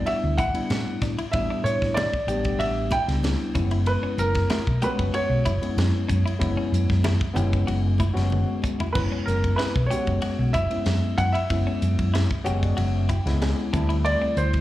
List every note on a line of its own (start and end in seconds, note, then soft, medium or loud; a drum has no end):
0.00 0.38 G3 medium
0.00 0.38 B3 medium
0.00 0.39 D4 medium
0.00 0.39 E4 medium
0.06 0.23 F#4 medium
0.06 0.39 E5 medium
0.06 ride medium
0.06 muted conga soft
0.24 0.36 D2 medium
0.37 0.52 A1 medium
0.37 0.55 E4 medium
0.37 0.97 F#5 medium
0.37 kick medium
0.37 hi-hat pedal medium
0.37 ride medium
0.54 1.19 G3 medium
0.54 1.19 B3 medium
0.54 1.19 D4 medium
0.54 1.19 E4 medium
0.54 muted fingered electric bass stroke soft
0.54 ride medium
0.70 0.84 A2 medium
0.70 snare medium
0.70 ride medium
0.70 high conga medium
1.02 1.15 A2 medium
1.02 1.10 D4 medium
1.02 kick medium
1.02 snare soft
1.02 hi-hat pedal medium
1.02 ride medium
1.02 muted conga soft
1.18 1.26 E4 medium
1.18 muted fingered electric bass stroke soft
1.18 ride medium
1.32 1.47 A1 medium
1.32 2.11 G3 medium
1.32 2.11 B3 medium
1.32 2.11 D4 medium
1.32 2.11 E4 medium
1.32 1.62 E5 medium
1.32 kick loud
1.32 ride medium
1.32 muted conga soft
1.50 1.66 D4 medium
1.64 1.78 A2 medium
1.64 1.97 C#5 medium
1.64 hi-hat pedal medium
1.64 ride medium
1.64 muted conga soft
1.82 2.08 A2 medium
1.82 kick medium
1.82 snare soft
1.94 2.12 E4 medium
1.94 2.61 D5 medium
1.94 snare loud
1.94 ride medium
1.94 high conga medium
1.94 low conga medium
2.13 kick medium
2.27 2.54 A1 medium
2.27 2.93 G3 medium
2.27 2.93 B3 medium
2.27 2.93 D4 medium
2.27 2.44 G4 medium
2.27 2.94 G4 medium
2.27 hi-hat pedal medium
2.27 ride medium
2.45 kick medium
2.45 ride medium
2.58 2.99 A1 medium
2.58 2.76 F#4 medium
2.58 2.89 E5 medium
2.58 ride medium
2.58 muted conga soft
2.91 3.08 E4 medium
2.91 3.51 G5 medium
2.91 kick medium
2.91 hi-hat pedal medium
2.91 ride medium
2.91 high conga medium
3.08 3.35 C#2 medium
3.08 3.55 G3 medium
3.08 3.53 B3 medium
3.08 3.55 D4 medium
3.08 3.53 E4 medium
3.08 snare soft
3.08 ride medium
3.23 snare loud
3.23 ride medium
3.23 high conga medium
3.54 3.96 F#1 medium
3.54 4.58 G#3 medium
3.54 4.58 B3 medium
3.54 4.58 C#4 medium
3.54 3.63 C#4 medium
3.54 4.58 E4 medium
3.54 kick medium
3.54 hi-hat pedal medium
3.54 ride medium
3.54 muted conga soft
3.71 3.79 E4 medium
3.71 ride medium
3.86 4.20 B4 medium
3.86 ride medium
3.86 muted conga soft
4.03 4.19 C#4 medium
4.03 muted fingered electric bass stroke soft
4.18 4.45 F#1 medium
4.18 4.84 A#4 medium
4.18 hi-hat pedal medium
4.18 ride soft
4.18 muted conga soft
4.35 kick medium
4.35 snare soft
4.35 ride medium
4.50 4.66 E4 medium
4.50 snare loud
4.50 ride medium
4.50 high conga medium
4.67 4.80 B1 medium
4.67 kick medium
4.82 5.46 G#3 medium
4.82 5.47 B3 medium
4.82 5.47 C#4 medium
4.82 5.47 F#4 medium
4.82 4.98 G4 medium
4.82 5.16 B4 medium
4.82 hi-hat pedal medium
4.82 ride soft
4.82 high conga medium
4.99 5.12 F#1 medium
4.99 kick medium
4.99 ride medium
5.13 5.30 F#4 medium
5.13 8.28 C#5 medium
5.13 muted fingered electric bass stroke soft
5.13 ride medium
5.13 muted conga soft
5.30 5.43 B1 medium
5.45 5.59 F#1 medium
5.45 5.61 E4 medium
5.45 kick medium
5.45 hi-hat pedal medium
5.45 ride medium
5.62 6.27 G#3 medium
5.62 6.27 B3 medium
5.62 6.27 C#4 medium
5.62 6.27 E4 medium
5.62 muted fingered electric bass stroke soft
5.62 ride medium
5.77 5.91 F#2 medium
5.77 snare loud
5.77 ride medium
5.77 high conga medium
6.08 6.23 F#2 medium
6.08 6.17 C#4 medium
6.08 kick medium
6.08 hi-hat pedal medium
6.08 ride medium
6.08 muted conga soft
6.26 6.33 E4 medium
6.26 muted fingered electric bass stroke soft
6.26 ride medium
6.39 6.55 F#1 medium
6.39 7.18 G#3 medium
6.39 7.18 B3 medium
6.39 7.19 C#4 medium
6.39 7.18 E4 loud
6.39 kick loud
6.39 ride medium
6.39 muted conga soft
6.57 6.73 C#4 medium
6.72 6.86 F#2 medium
6.72 hi-hat pedal medium
6.72 ride medium
6.90 7.16 F#2 medium
6.90 kick medium
6.90 snare soft
7.04 7.21 E4 medium
7.04 snare medium
7.04 ride medium
7.04 high conga medium
7.04 low conga medium
7.21 kick medium
7.34 7.63 F#1 medium
7.34 8.00 G#3 medium
7.34 8.00 B3 medium
7.34 8.00 C#4 medium
7.34 8.00 E4 loud
7.34 7.52 G4 medium
7.34 hi-hat pedal medium
7.34 ride medium
7.34 low conga medium
7.53 kick medium
7.53 ride medium
7.67 8.08 F#1 medium
7.67 7.83 F#4 medium
7.67 ride medium
7.67 muted conga soft
7.98 8.16 E4 medium
7.98 kick medium
7.98 hi-hat pedal medium
7.98 ride medium
7.98 high conga medium
8.13 8.43 F#1 medium
8.13 8.80 G#3 medium
8.13 8.80 B3 medium
8.13 8.80 C#4 medium
8.13 8.80 F#4 medium
8.13 ride medium
8.18 snare soft
8.30 high tom soft
8.30 high conga medium
8.62 8.72 C#4 medium
8.62 kick medium
8.62 hi-hat pedal medium
8.62 muted conga soft
8.80 8.88 E4 medium
8.80 floor tom medium
8.93 9.09 F#1 medium
8.93 9.73 G#3 medium
8.93 9.73 B3 medium
8.93 9.73 C#4 medium
8.93 9.74 E4 medium
8.93 9.00 B4 medium
8.93 kick loud
8.93 crash medium
9.12 9.28 C#4 medium
9.26 9.54 F#1 medium
9.26 9.59 A#4 medium
9.26 hi-hat pedal medium
9.26 ride medium
9.44 kick medium
9.44 ride medium
9.56 9.74 E4 medium
9.56 9.87 B4 medium
9.56 snare loud
9.56 ride medium
9.76 9.88 B1 medium
9.76 kick medium
9.86 10.55 G#3 medium
9.86 10.54 C#5 medium
9.90 10.56 B3 medium
9.90 10.56 C#4 medium
9.90 10.56 F#4 medium
9.90 10.07 G4 medium
9.90 hi-hat pedal medium
9.90 ride medium
10.07 10.20 F#1 medium
10.07 kick medium
10.07 ride soft
10.22 10.38 F#4 medium
10.22 muted fingered electric bass stroke soft
10.22 ride medium
10.39 10.52 B1 medium
10.53 10.68 F#1 medium
10.53 10.71 E4 medium
10.53 11.14 E5 medium
10.53 kick medium
10.53 hi-hat pedal medium
10.53 ride medium
10.70 11.35 G#3 medium
10.70 11.36 B3 medium
10.70 11.36 C#4 medium
10.70 11.36 E4 medium
10.70 muted fingered electric bass stroke soft
10.70 ride medium
10.86 11.00 F#2 medium
10.86 snare medium
10.86 ride medium
11.18 11.32 F#2 medium
11.18 11.26 C#4 medium
11.18 11.35 F#5 loud
11.18 kick medium
11.18 hi-hat pedal medium
11.18 ride medium
11.32 11.42 E4 medium
11.32 12.25 E5 medium
11.32 muted fingered electric bass stroke soft
11.32 ride medium
11.50 11.64 F#1 medium
11.50 12.29 G#3 medium
11.50 12.29 B3 medium
11.50 12.29 C#4 medium
11.50 12.29 E4 medium
11.50 kick loud
11.50 ride medium
11.67 11.83 C#4 medium
11.82 11.96 F#2 medium
11.82 hi-hat pedal medium
11.82 ride medium
11.99 12.25 F#2 medium
11.99 kick medium
11.99 ride medium
12.14 12.30 E4 medium
12.14 snare loud
12.14 ride medium
12.31 kick medium
12.44 12.73 F#1 medium
12.44 13.10 G#3 medium
12.44 13.10 B3 medium
12.44 13.10 C#4 medium
12.44 13.10 F#4 loud
12.44 12.62 G4 medium
12.44 12.61 C#5 medium
12.44 hi-hat pedal medium
12.44 ride medium
12.62 12.77 D5 medium
12.62 kick medium
12.62 ride medium
12.77 13.18 F#1 medium
12.77 12.93 F#4 medium
12.77 13.07 E5 medium
12.77 ride medium
13.09 13.25 E4 medium
13.09 13.26 G5 medium
13.09 kick medium
13.09 hi-hat pedal medium
13.09 ride medium
13.26 13.52 C#2 medium
13.26 13.73 G#3 medium
13.26 13.73 B3 medium
13.26 13.73 C#4 medium
13.26 13.72 E4 medium
13.26 13.40 F#5 medium
13.26 snare soft
13.26 ride medium
13.41 13.71 G#5 medium
13.41 snare medium
13.41 ride medium
13.72 14.14 D2 medium
13.72 14.61 G3 medium
13.72 14.61 A3 medium
13.72 14.61 C4 medium
13.72 13.82 C4 medium
13.72 14.61 E4 medium
13.72 14.03 A5 medium
13.72 kick medium
13.72 hi-hat pedal medium
13.72 ride medium
13.89 13.97 E4 medium
13.89 ride medium
14.05 14.35 D5 medium
14.05 ride medium
14.22 14.38 C4 medium
14.22 muted fingered electric bass stroke soft
14.37 14.61 D2 medium
14.37 14.61 C5 medium
14.37 hi-hat pedal medium
14.37 ride soft
14.53 kick medium
14.53 ride medium